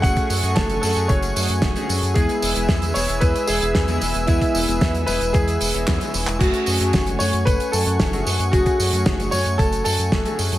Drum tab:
CC |----------------|----------------|----------------|x---------------|
HH |xxoxxxoxxxoxxxox|xxoxxxoxxxoxxxox|xxoxxxoxxxoxxxox|xxoxxxoxxxoxxxox|
TB |xxxxxxxxxxxxxxxx|xxxxxxxxxxxxxxxx|xxxxxxxxxxxxxxxx|xxxxxxxxxxxxxxxx|
CP |----------------|----------------|------------x--x|----------------|
SD |----o-------o---|----o-------o---|----o-------o---|----o-------o---|
BD |oo--o---o---o---|o---o---o---o---|oo--o---o---o---|o---o---o---o---|

CC |----------------|
HH |xxoxxxoxxxoxxxox|
TB |xxxxxxxxxxxxxxxx|
CP |----------------|
SD |----o-------o---|
BD |oo--o---o---o---|